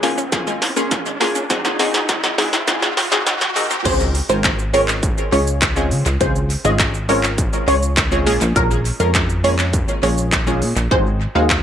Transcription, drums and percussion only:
0.03 snare medium
0.03 open hi-hat medium
0.03 shaker medium
0.18 shaker medium
0.32 kick loud
0.32 snare loud
0.32 closed hi-hat medium
0.32 shaker medium
0.47 shaker medium
0.62 snare loud
0.62 open hi-hat medium
0.62 shaker medium
0.77 shaker medium
0.91 kick loud
0.91 snare medium
0.91 closed hi-hat medium
0.91 shaker medium
1.06 shaker medium
1.21 snare loud
1.21 open hi-hat medium
1.21 shaker soft
1.35 shaker medium
1.50 kick loud
1.50 snare loud
1.50 closed hi-hat medium
1.50 shaker medium
1.65 snare medium
1.65 shaker medium
1.79 snare loud
1.79 open hi-hat medium
1.79 shaker soft
1.94 snare loud
1.94 shaker medium
2.09 kick loud
2.09 snare loud
2.09 closed hi-hat medium
2.09 shaker medium
2.24 snare loud
2.24 shaker medium
2.38 snare loud
2.38 open hi-hat medium
2.38 shaker medium
2.53 snare loud
2.53 shaker medium
2.68 kick loud
2.68 snare loud
2.68 closed hi-hat medium
2.68 shaker medium
2.82 snare loud
2.82 shaker medium
2.97 snare loud
2.97 open hi-hat medium
2.97 shaker medium
3.12 snare loud
3.12 shaker medium
3.27 snare loud
3.27 closed hi-hat medium
3.27 shaker medium
3.41 snare loud
3.41 shaker medium
3.56 open hi-hat medium
3.56 shaker medium
3.71 shaker medium
3.85 kick loud
3.85 closed hi-hat medium
3.85 crash loud
3.85 shaker medium
4.00 shaker medium
4.15 open hi-hat medium
4.15 shaker medium
4.29 shaker medium
4.44 kick loud
4.44 snare loud
4.44 clap loud
4.44 closed hi-hat medium
4.44 shaker medium
4.59 shaker medium
4.74 open hi-hat medium
4.74 shaker medium
4.88 clap medium
4.88 shaker medium
5.03 kick loud
5.03 closed hi-hat medium
5.03 shaker medium
5.18 shaker medium
5.33 open hi-hat medium
5.33 shaker medium
5.47 shaker medium
5.62 kick loud
5.62 snare medium
5.62 clap loud
5.62 closed hi-hat medium
5.62 shaker medium
5.76 shaker medium
5.91 open hi-hat medium
5.91 shaker medium
6.06 shaker medium
6.21 kick loud
6.21 closed hi-hat medium
6.21 shaker medium
6.36 shaker medium
6.50 open hi-hat medium
6.50 shaker medium
6.65 shaker medium
6.79 kick loud
6.79 snare loud
6.79 clap loud
6.79 closed hi-hat medium
6.79 shaker medium
6.94 shaker medium
7.09 open hi-hat medium
7.09 shaker medium
7.23 clap medium
7.23 shaker medium
7.38 kick loud
7.38 closed hi-hat medium
7.38 shaker medium
7.53 shaker medium
7.68 open hi-hat medium
7.68 shaker medium
7.82 shaker medium
7.97 kick loud
7.97 snare loud
7.97 clap loud
7.97 closed hi-hat medium
7.97 shaker medium
8.12 shaker medium
8.27 open hi-hat medium
8.27 shaker medium
8.41 shaker medium
8.56 kick loud
8.56 closed hi-hat medium
8.56 shaker medium
8.71 shaker medium
8.85 open hi-hat medium
8.85 shaker medium
9.00 shaker medium
9.15 kick loud
9.15 snare loud
9.15 clap loud
9.15 closed hi-hat medium
9.15 shaker medium
9.30 shaker medium
9.44 open hi-hat medium
9.44 shaker medium
9.59 clap medium
9.59 shaker medium
9.73 kick loud
9.73 closed hi-hat medium
9.73 shaker medium
9.88 shaker medium
10.03 open hi-hat medium
10.03 shaker medium
10.18 shaker medium
10.32 kick loud
10.32 snare loud
10.32 clap loud
10.32 closed hi-hat medium
10.32 shaker medium
10.47 shaker medium
10.62 open hi-hat medium
10.62 shaker medium
10.76 shaker medium
10.91 kick loud
11.50 kick loud
11.50 snare loud
11.50 clap loud

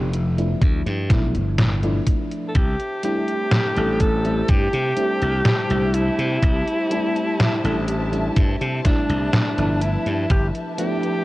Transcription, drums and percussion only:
0.13 closed hi-hat medium
0.38 closed hi-hat soft
0.62 kick loud
0.62 closed hi-hat medium
0.87 closed hi-hat soft
1.10 kick loud
1.10 snare medium
1.10 closed hi-hat medium
1.35 closed hi-hat soft
1.58 snare loud
1.58 closed hi-hat medium
1.83 closed hi-hat soft
2.07 kick medium
2.07 closed hi-hat medium
2.31 closed hi-hat soft
2.55 kick loud
2.55 closed hi-hat medium
2.80 closed hi-hat soft
3.03 closed hi-hat medium
3.28 closed hi-hat soft
3.51 snare loud
3.51 closed hi-hat medium
3.76 closed hi-hat soft
4.00 kick medium
4.00 closed hi-hat medium
4.25 closed hi-hat soft
4.48 kick loud
4.48 closed hi-hat medium
4.73 closed hi-hat soft
4.97 closed hi-hat medium
5.22 closed hi-hat soft
5.45 snare loud
5.45 closed hi-hat medium
5.70 closed hi-hat soft
5.94 closed hi-hat medium
6.19 closed hi-hat soft
6.43 kick loud
6.43 closed hi-hat medium
6.68 closed hi-hat soft
6.91 closed hi-hat medium
7.16 closed hi-hat soft
7.40 snare loud
7.40 closed hi-hat medium
7.65 closed hi-hat soft
7.88 closed hi-hat medium
8.13 closed hi-hat soft
8.36 kick loud
8.36 closed hi-hat medium
8.61 closed hi-hat soft
8.85 kick loud
8.85 snare medium
8.85 closed hi-hat medium
9.10 closed hi-hat soft
9.33 snare loud
9.33 closed hi-hat medium
9.58 closed hi-hat soft
9.81 closed hi-hat medium
10.06 closed hi-hat soft
10.30 kick loud
10.30 closed hi-hat medium
10.55 closed hi-hat soft
10.78 closed hi-hat medium
11.03 closed hi-hat soft

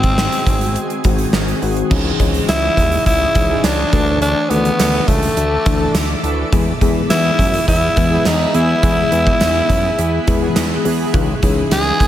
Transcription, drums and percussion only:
0.03 kick medium
0.03 closed hi-hat medium
0.18 snare loud
0.32 closed hi-hat medium
0.47 kick medium
0.47 closed hi-hat medium
0.61 closed hi-hat medium
0.76 closed hi-hat medium
0.90 closed hi-hat soft
1.04 kick loud
1.04 closed hi-hat medium
1.18 closed hi-hat medium
1.33 snare loud
1.48 closed hi-hat soft
1.62 open hi-hat medium
1.77 closed hi-hat soft
1.91 kick loud
1.91 crash loud
2.20 kick medium
2.20 closed hi-hat medium
2.34 closed hi-hat medium
2.49 snare loud
2.49 closed hi-hat loud
2.49 tambourine medium
2.77 kick medium
2.77 closed hi-hat medium
2.92 closed hi-hat medium
3.06 kick medium
3.06 closed hi-hat medium
3.35 kick loud
3.35 closed hi-hat medium
3.64 snare loud
3.64 closed hi-hat loud
3.64 tambourine medium
3.93 kick loud
3.93 closed hi-hat medium
4.22 closed hi-hat medium
4.51 closed hi-hat medium
4.65 closed hi-hat medium
4.79 snare loud
4.79 closed hi-hat loud
4.79 tambourine medium
5.08 kick medium
5.08 closed hi-hat medium
5.23 closed hi-hat medium
5.37 closed hi-hat medium
5.66 kick loud
5.66 closed hi-hat medium
5.95 snare loud
5.95 closed hi-hat medium
5.95 tambourine medium
6.24 closed hi-hat medium
6.53 kick loud
6.53 closed hi-hat medium
6.81 kick medium
6.81 closed hi-hat medium
7.10 snare loud
7.10 closed hi-hat loud
7.10 tambourine medium
7.39 kick medium
7.39 closed hi-hat medium
7.54 closed hi-hat medium
7.68 kick medium
7.68 closed hi-hat medium
7.97 kick loud
7.97 closed hi-hat medium
8.25 snare loud
8.25 closed hi-hat loud
8.25 tambourine medium
8.54 closed hi-hat medium
8.83 kick loud
8.83 closed hi-hat medium
9.12 closed hi-hat medium
9.27 kick loud
9.41 snare loud
9.41 closed hi-hat loud
9.41 tambourine medium
9.69 kick medium
9.69 closed hi-hat medium
9.99 closed hi-hat medium
10.27 kick loud
10.27 closed hi-hat medium
10.56 snare loud
10.56 closed hi-hat loud
10.56 tambourine medium
10.85 open hi-hat medium
11.14 kick loud
11.14 closed hi-hat medium
11.43 kick medium
11.43 closed hi-hat medium
11.71 snare loud
11.71 closed hi-hat loud
11.71 tambourine medium
12.00 kick loud
12.00 closed hi-hat medium

